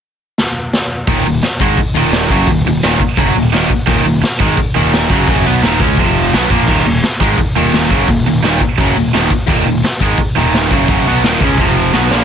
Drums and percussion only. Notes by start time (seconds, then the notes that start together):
0.38 snare
0.73 snare
1.07 kick, open hi-hat
1.42 snare, open hi-hat
1.60 kick
1.77 kick, open hi-hat
2.12 snare, open hi-hat
2.30 kick
2.46 kick, open hi-hat
2.82 snare, open hi-hat
3.00 kick
3.17 kick, open hi-hat
3.53 snare, open hi-hat
3.70 kick
3.87 kick, open hi-hat
4.22 snare, open hi-hat
4.40 kick
4.57 kick, open hi-hat
4.92 snare, open hi-hat
5.10 kick
5.28 kick, open hi-hat
5.62 snare, open hi-hat
5.80 kick
5.97 kick, open hi-hat
6.33 snare, open hi-hat
6.50 kick
6.68 kick, crash
7.02 snare, open hi-hat
7.20 kick
7.38 kick, open hi-hat
7.73 snare, open hi-hat
7.90 kick
8.08 kick, open hi-hat
8.43 snare, open hi-hat
8.60 kick
8.78 kick, open hi-hat
9.13 snare, open hi-hat
9.30 kick
9.48 kick, open hi-hat
9.83 snare, open hi-hat
10.00 kick
10.18 kick, open hi-hat
10.53 snare, open hi-hat
10.71 kick
10.88 kick, open hi-hat
11.23 snare, open hi-hat
11.40 kick
11.58 kick, open hi-hat
11.93 snare
12.11 snare